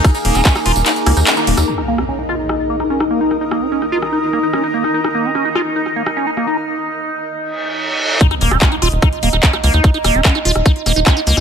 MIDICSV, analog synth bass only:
0, 0, Header, 1, 2, 480
1, 0, Start_track
1, 0, Tempo, 408163
1, 52, Time_signature, 4, 2, 24, 8
1, 13410, End_track
2, 0, Start_track
2, 0, Title_t, "Analog synth bass"
2, 0, Program_c, 0, 38
2, 293, Note_on_c, 0, 27, 99
2, 368, Note_off_c, 0, 27, 0
2, 413, Note_on_c, 0, 27, 84
2, 488, Note_off_c, 0, 27, 0
2, 773, Note_on_c, 0, 27, 99
2, 848, Note_off_c, 0, 27, 0
2, 892, Note_on_c, 0, 27, 82
2, 967, Note_off_c, 0, 27, 0
2, 1253, Note_on_c, 0, 37, 97
2, 1328, Note_off_c, 0, 37, 0
2, 1372, Note_on_c, 0, 39, 81
2, 1448, Note_off_c, 0, 39, 0
2, 1732, Note_on_c, 0, 27, 94
2, 1808, Note_off_c, 0, 27, 0
2, 1853, Note_on_c, 0, 39, 82
2, 1928, Note_off_c, 0, 39, 0
2, 9892, Note_on_c, 0, 27, 95
2, 9967, Note_off_c, 0, 27, 0
2, 10012, Note_on_c, 0, 27, 81
2, 10087, Note_off_c, 0, 27, 0
2, 10372, Note_on_c, 0, 27, 95
2, 10447, Note_off_c, 0, 27, 0
2, 10492, Note_on_c, 0, 27, 82
2, 10567, Note_off_c, 0, 27, 0
2, 10852, Note_on_c, 0, 27, 95
2, 10928, Note_off_c, 0, 27, 0
2, 10972, Note_on_c, 0, 27, 81
2, 11047, Note_off_c, 0, 27, 0
2, 11332, Note_on_c, 0, 37, 93
2, 11407, Note_off_c, 0, 37, 0
2, 11452, Note_on_c, 0, 39, 83
2, 11527, Note_off_c, 0, 39, 0
2, 11812, Note_on_c, 0, 27, 96
2, 11887, Note_off_c, 0, 27, 0
2, 11932, Note_on_c, 0, 27, 81
2, 12007, Note_off_c, 0, 27, 0
2, 12292, Note_on_c, 0, 27, 95
2, 12367, Note_off_c, 0, 27, 0
2, 12412, Note_on_c, 0, 27, 84
2, 12487, Note_off_c, 0, 27, 0
2, 12772, Note_on_c, 0, 27, 99
2, 12847, Note_off_c, 0, 27, 0
2, 12892, Note_on_c, 0, 27, 82
2, 12967, Note_off_c, 0, 27, 0
2, 13252, Note_on_c, 0, 37, 93
2, 13327, Note_off_c, 0, 37, 0
2, 13372, Note_on_c, 0, 39, 82
2, 13410, Note_off_c, 0, 39, 0
2, 13410, End_track
0, 0, End_of_file